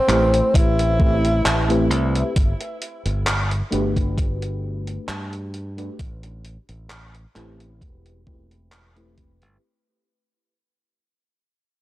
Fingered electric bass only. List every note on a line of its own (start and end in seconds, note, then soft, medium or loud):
0.09 0.40 A1 medium
0.54 1.45 A1 medium
1.45 1.90 A1 medium
1.90 2.22 C2 medium
2.36 2.52 G1 loud
3.06 3.61 G1 medium
3.73 4.98 G1 medium
5.08 5.88 G2 loud
5.99 6.56 A1 medium
6.69 7.25 A1 medium
7.36 7.83 A1 medium
7.81 9.42 E1 medium
9.42 9.56 G1 medium